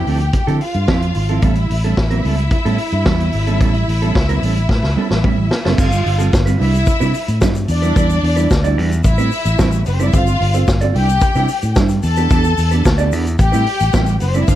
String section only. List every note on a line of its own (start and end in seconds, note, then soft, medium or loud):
0.00 0.57 G4 medium
0.00 0.57 G5 medium
0.62 1.42 F4 medium
0.62 1.41 F5 medium
1.43 5.74 E4 medium
1.43 5.75 E5 medium
5.78 6.32 F4 medium
5.78 6.32 F5 medium
6.59 7.40 E4 medium
6.59 7.40 E5 loud
7.69 8.75 D4 loud
7.69 8.75 D5 loud
9.04 9.79 E4 medium
9.04 9.79 E5 loud
9.86 9.93 B3 medium
9.86 9.93 B4 medium
9.94 10.00 C4 medium
9.94 10.00 C5 medium
10.00 10.07 D4 medium
10.00 10.07 D5 medium
10.06 10.13 E4 medium
10.06 10.13 E5 loud
10.14 10.67 F4 medium
10.14 10.67 F5 loud
10.95 11.75 G4 loud
10.95 11.75 G5 loud
12.03 13.10 A4 loud
12.03 13.10 A5 loud
13.39 14.14 G4 medium
13.39 14.14 G5 medium
14.21 14.28 B3 medium
14.21 14.28 B4 medium
14.28 14.35 C4 medium
14.28 14.35 C5 medium
14.35 14.42 D4 medium
14.35 14.42 D5 medium
14.42 14.48 E4 medium
14.42 14.48 E5 medium
14.48 14.55 F4 medium
14.48 14.55 F5 loud